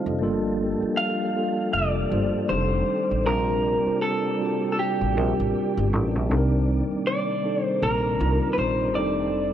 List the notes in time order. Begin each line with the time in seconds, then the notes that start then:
Already playing: D#3 G3 A3 C4 D4 D#4 F4 C5 D5 D#5 F5 A5
0.06 F1 A4 D#5
0.19 G1 F3 G3 A#3 D4 F4 G4 A4
0.23 A4
0.82 muted upright bass stroke
0.97 F5
1.35 G3 A#3 D4 F4 A4
1.74 F1 D5
2.11 G1 G3 A#3 D4 F4 C5
2.47 F1 D#3 G3 A3 C4 D4 D#4 G4 G#4 C5 D5
2.57 A4
3.11 A1
3.24 A#1 C3 G3 A#3 C4 D4 F4 A#4
3.85 G3 C4 D4 F4 C5, muted upright bass stroke
4.02 A4
4.39 G3 C4 D4 F4 F#4
4.47 G4
4.72 A4
4.79 G4
5.01 A1
5.15 A#1 G3 C4 D4 F4 A#4
5.39 A1
5.77 G1
5.93 A1
6.15 A#1
6.29 C2 D#3 G3 C4 D4 D#4 A4
6.37 A#4
6.91 muted upright bass stroke
7.07 D5
7.43 G3 C4 D4 D#4 A4
7.63 C5
7.82 A#1 A#4
8.19 C2 G3 C4 D4 D#4 F4
8.53 B4
8.58 A#1 C5
8.94 F1 D#3 G3 A3 C4 D4 D#4 G4 A4 D5